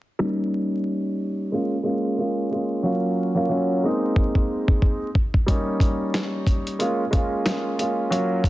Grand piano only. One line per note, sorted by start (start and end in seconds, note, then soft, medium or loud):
0.19 1.52 G3 medium
0.19 1.51 A#3 medium
0.19 1.52 C#4 medium
0.19 1.53 D#4 medium
1.52 1.74 G#3 medium
1.52 1.74 A#3 medium
1.52 1.75 C#4 medium
1.52 1.75 F4 loud
1.83 2.15 G#3 medium
1.83 2.15 A#3 medium
1.83 2.16 C#4 medium
1.83 2.16 F4 medium
2.18 2.49 G#3 medium
2.18 2.49 A#3 medium
2.18 2.50 C#4 medium
2.18 2.50 F4 medium
2.51 2.82 G#3 medium
2.51 2.82 A#3 medium
2.51 2.83 C#4 medium
2.51 2.83 F4 medium
2.83 3.31 F#3 medium
2.83 3.31 A#3 medium
2.83 3.32 C#4 medium
2.83 3.32 F4 medium
3.35 3.48 F#3 medium
3.35 3.48 A#3 medium
3.35 3.49 C#4 medium
3.35 3.50 F4 loud
3.49 3.83 F#3 medium
3.49 3.83 A#3 medium
3.49 3.83 C#4 medium
3.49 3.84 F4 medium
3.83 5.06 G#3 medium
3.83 5.07 A#3 medium
3.83 5.07 C4 medium
3.83 5.07 D#4 loud
5.46 6.79 G3 medium
5.46 6.78 A#3 medium
5.46 6.79 C#4 medium
5.46 6.80 D#4 medium
6.79 7.02 G#3 medium
6.79 7.02 A#3 medium
6.79 7.02 C#4 medium
6.79 7.02 F4 loud
7.11 7.43 G#3 medium
7.11 7.43 A#3 medium
7.11 7.43 C#4 medium
7.11 7.44 F4 medium
7.45 7.76 G#3 medium
7.45 7.77 A#3 medium
7.45 7.77 C#4 medium
7.45 7.77 F4 medium
7.78 8.09 G#3 medium
7.78 8.09 A#3 medium
7.78 8.10 C#4 medium
7.78 8.10 F4 medium
8.10 8.49 F#3 medium
8.10 8.49 A#3 medium
8.10 8.49 C#4 medium
8.10 8.49 F4 medium